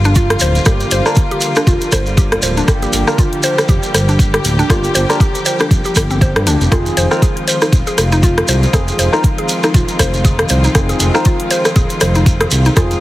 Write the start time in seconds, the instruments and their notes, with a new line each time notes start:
Already playing: analog synth bass G1, string section D3 F3 G3 A#3 F4
0.04 synth pluck D4, closed hi-hat, shekere
0.15 synth pluck F4, kick, closed hi-hat, shekere
0.30 cross-stick, closed hi-hat
0.39 analog synth bass D1, synth pluck C5, open hi-hat, shekere
0.55 closed hi-hat, shekere
0.65 analog synth bass G1, tine electric piano A#3 D4 F4 G4, synth pluck G4, kick, cross-stick, closed hi-hat, shekere
0.80 closed hi-hat, shekere
0.91 analog synth bass G1, synth pluck C5, open hi-hat, shekere
1.06 tine electric piano A#3 D4 F4 A#4, synth pluck D4, cross-stick, shekere
1.15 kick, closed hi-hat, shekere
1.31 synth pluck G4, closed hi-hat
1.41 open hi-hat, shekere
1.55 synth pluck D4, cross-stick, closed hi-hat, shekere
1.67 analog synth bass F1, synth pluck F4, kick, closed hi-hat, shekere
1.81 closed hi-hat, shekere
1.92 analog synth bass G1, synth pluck C5, kick, cross-stick, open hi-hat, shekere
2.06 closed hi-hat, shekere
2.17 synth pluck G4, kick, closed hi-hat, shekere
2.32 cross-stick, closed hi-hat
2.42 analog synth bass D1, synth pluck C5, open hi-hat, shekere
2.57 synth pluck D4, closed hi-hat, shekere
2.68 analog synth bass G1, tine electric piano A#3 D4 F4 G4, string section G4, kick, cross-stick, closed hi-hat, shekere
2.82 synth pluck G4, closed hi-hat, shekere
2.93 analog synth bass G1, open hi-hat, shekere
3.07 tine electric piano A#3 D4 F4 A#4, synth pluck D4, cross-stick, shekere
3.18 synth pluck F4, kick, closed hi-hat, shekere
3.33 closed hi-hat
3.43 synth pluck C5, open hi-hat, shekere
3.58 cross-stick, closed hi-hat, shekere
3.68 analog synth bass F1, synth pluck G4, kick, closed hi-hat, shekere
3.83 closed hi-hat, shekere
3.94 analog synth bass G1, synth pluck C5, cross-stick, open hi-hat, shekere
4.08 synth pluck D4, closed hi-hat, shekere
4.19 kick, closed hi-hat, shekere
4.34 synth pluck G4, cross-stick, closed hi-hat
4.44 analog synth bass D1, open hi-hat, shekere
4.59 synth pluck D4, closed hi-hat, shekere
4.70 analog synth bass G1, tine electric piano A#3 D4 F4 G4, synth pluck F4, kick, cross-stick, closed hi-hat, shekere
4.84 closed hi-hat, shekere
4.95 analog synth bass G1, synth pluck C5, open hi-hat, shekere
5.09 tine electric piano A#3 D4 F4 A#4, cross-stick, closed hi-hat, shekere
5.20 synth pluck G4, kick, closed hi-hat, shekere
5.35 closed hi-hat, shekere
5.45 synth pluck C5, open hi-hat, shekere
5.59 synth pluck D4, cross-stick, closed hi-hat, shekere
5.71 analog synth bass F1, kick, closed hi-hat, shekere
5.84 synth pluck G4, closed hi-hat, shekere
5.95 analog synth bass G1, kick, cross-stick, open hi-hat, shekere
6.10 synth pluck C4, closed hi-hat, shekere
6.21 synth pluck C5, kick, closed hi-hat, shekere
6.36 analog synth bass G2, cross-stick, closed hi-hat
6.46 analog synth bass D2, synth pluck D4, open hi-hat, shekere
6.61 analog synth bass F1, closed hi-hat, shekere
6.71 analog synth bass F1, string section D#3 G#3 C4 F4, tine electric piano C4 D#4 F4 G#4, synth pluck F4, kick, cross-stick, closed hi-hat, shekere
6.86 closed hi-hat, shekere
6.97 analog synth bass F1, synth pluck C5, open hi-hat, shekere
7.11 tine electric piano C4 D#4 F4 A#4, cross-stick, shekere
7.22 synth pluck G#4, kick, closed hi-hat, shekere
7.37 closed hi-hat
7.48 synth pluck C5, open hi-hat, shekere
7.61 synth pluck D#4, cross-stick, closed hi-hat, shekere
7.72 analog synth bass D#1, kick, closed hi-hat, shekere
7.87 synth pluck G#4, closed hi-hat, shekere
7.98 analog synth bass F1, cross-stick, open hi-hat, shekere
8.12 synth pluck D#4, closed hi-hat, shekere
8.23 synth pluck F4, kick, closed hi-hat, shekere
8.38 cross-stick, closed hi-hat
8.48 analog synth bass C2, synth pluck C5, open hi-hat, shekere
8.63 closed hi-hat, shekere
8.73 analog synth bass F1, tine electric piano C4 D#4 F4 G#4, synth pluck G#4, kick, cross-stick, closed hi-hat, shekere
8.88 closed hi-hat, shekere
8.99 analog synth bass F1, synth pluck C5, open hi-hat, shekere
9.13 tine electric piano C4 D#4 F4 A#4, synth pluck D#4, cross-stick, shekere
9.23 kick, closed hi-hat, shekere
9.38 synth pluck G#4, closed hi-hat
9.48 open hi-hat, shekere
9.63 synth pluck D#4, cross-stick, closed hi-hat, shekere
9.74 analog synth bass D#1, synth pluck F4, kick, closed hi-hat, shekere
9.88 closed hi-hat, shekere
9.99 analog synth bass F1, synth pluck C5, kick, cross-stick, open hi-hat, shekere
10.14 closed hi-hat, shekere
10.25 synth pluck G#4, kick, closed hi-hat, shekere
10.39 cross-stick, closed hi-hat
10.49 analog synth bass C2, synth pluck C5, open hi-hat, shekere
10.64 synth pluck D#4, closed hi-hat, shekere
10.75 analog synth bass F1, tine electric piano C4 D#4 F4 G#4, kick, cross-stick, closed hi-hat, shekere
10.89 synth pluck G#4, closed hi-hat, shekere
11.00 analog synth bass F1, open hi-hat, shekere
11.14 tine electric piano C4 D#4 F4 A#4, synth pluck D#4, cross-stick, shekere
11.25 synth pluck F4, kick, closed hi-hat, shekere
11.40 closed hi-hat
11.51 synth pluck C5, open hi-hat, shekere
11.65 cross-stick, closed hi-hat, shekere
11.76 analog synth bass D#1, synth pluck G#4, kick, closed hi-hat, shekere
11.89 closed hi-hat, shekere
12.00 analog synth bass F1, synth pluck C5, cross-stick, open hi-hat, shekere
12.14 synth pluck D#4, closed hi-hat, shekere
12.26 kick, closed hi-hat, shekere
12.41 synth pluck G#4, cross-stick, closed hi-hat
12.51 analog synth bass C2, open hi-hat, shekere
12.65 synth pluck D#4, closed hi-hat, shekere
12.76 analog synth bass F1, tine electric piano C4 D#4 F4 G#4, synth pluck F4, kick, cross-stick, closed hi-hat, shekere
12.91 closed hi-hat, shekere